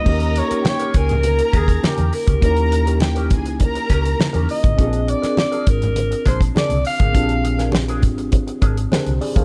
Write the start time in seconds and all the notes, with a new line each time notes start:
Already playing: D#5
0.04 D#2 A#3 C#4 D#4 G4 A#4 A#5, kick, crash
0.20 muted clean electric guitar stroke, closed hi-hat
0.36 C#5, muted clean electric guitar stroke, closed hi-hat
0.50 C#4 G4 A#4, muted fingered electric bass stroke, closed hi-hat
0.65 G4 C#5 G5, muted clean electric guitar stroke, snare, high conga
0.79 C#4 G4 A#4, closed hi-hat
0.94 C#2 G#4 A#4 G#5, kick, closed hi-hat
1.09 muted clean electric guitar stroke, closed hi-hat, low conga
1.23 A#4 A#5, muted clean electric guitar stroke, closed hi-hat, muted conga
1.39 muted clean electric guitar stroke, closed hi-hat
1.53 D#2 C#4 G4 G#4 A#4, kick, closed hi-hat, muted conga
1.68 muted clean electric guitar stroke, kick, closed hi-hat
1.83 C#4 G4 A#4, muted fingered electric bass stroke, snare, high conga
1.98 E2, closed hi-hat, high conga
2.12 A#4, muted clean electric guitar stroke, open hi-hat
2.27 C#2 C#4 G4 A#4, kick, closed hi-hat, high conga
2.41 D#2 A#3 C#4 D#4 E4 G4 A#4 A#5, kick, closed hi-hat
2.51 G4
2.56 muted clean electric guitar stroke, closed hi-hat
2.72 muted clean electric guitar stroke, closed hi-hat
2.86 C#4 G4 A#4, closed hi-hat
3.00 G4 G5, muted clean electric guitar stroke, snare, high conga
3.15 C#4 G4 A#4, closed hi-hat
3.30 C#2 G#4 G#5, muted clean electric guitar stroke, kick, closed hi-hat, low conga
3.46 muted clean electric guitar stroke, closed hi-hat
3.60 A#4 A#5, muted clean electric guitar stroke, kick, closed hi-hat, muted conga
3.75 muted clean electric guitar stroke, closed hi-hat
3.90 C#2 C#4 G4 A#4, kick, closed hi-hat, muted conga
4.05 muted clean electric guitar stroke, closed hi-hat
4.19 muted clean electric guitar stroke, snare, high conga
4.33 E2 C#4 G4 A#4, closed hi-hat, high conga
4.49 D#5, muted clean electric guitar stroke, open hi-hat
4.63 G#1, muted clean electric guitar stroke, kick, closed hi-hat, high conga
4.77 A#1 C4 D4 F4 G#4 A#4, kick, closed hi-hat
4.81 G#4
4.93 muted clean electric guitar stroke, closed hi-hat
5.08 D5, muted clean electric guitar stroke, closed hi-hat
5.22 D4 G#4 A#4, muted fingered electric bass stroke, snare, closed hi-hat
5.37 D5, muted clean electric guitar stroke, snare, high conga
5.52 D4 G#4 A#4, closed hi-hat
5.67 G#1 A#4, kick, closed hi-hat
5.82 muted clean electric guitar stroke, closed hi-hat, low conga
5.96 muted clean electric guitar stroke, closed hi-hat, muted conga
6.11 muted clean electric guitar stroke, closed hi-hat
6.26 A#1 D4 G#4 A#4 C5, kick, closed hi-hat, muted conga
6.41 muted clean electric guitar stroke, kick, closed hi-hat
6.55 D4 G#4 A#4 D5, snare, high conga
6.69 C2, closed hi-hat, high conga
6.85 F5, muted clean electric guitar stroke, open hi-hat
6.99 G#1 D4 G#4 A#4, kick, closed hi-hat, high conga
7.13 A#1 C4 D4 F4 G#4 A#4, kick, closed hi-hat
7.17 G4
7.23 G#4
7.29 muted clean electric guitar stroke, closed hi-hat
7.44 muted clean electric guitar stroke, closed hi-hat
7.59 D4 G#4 A#4, snare, closed hi-hat
7.72 muted clean electric guitar stroke, snare, high conga
7.88 D4 G#4 A#4, closed hi-hat
8.02 G#1, muted clean electric guitar stroke, kick, closed hi-hat, low conga
8.18 muted clean electric guitar stroke, closed hi-hat
8.32 muted clean electric guitar stroke, kick, closed hi-hat, muted conga
8.47 muted clean electric guitar stroke, closed hi-hat
8.62 G#1 D4 G#4 A#4, kick, closed hi-hat, muted conga
8.77 muted clean electric guitar stroke, closed hi-hat
8.92 D4 G4 G#4 A#4 C5, snare, high conga
9.06 C2, closed hi-hat, high conga
9.21 G#4 D5, muted clean electric guitar stroke, open hi-hat
9.36 D2 D4 G#4 A#4 C5 F5, kick, closed hi-hat, high conga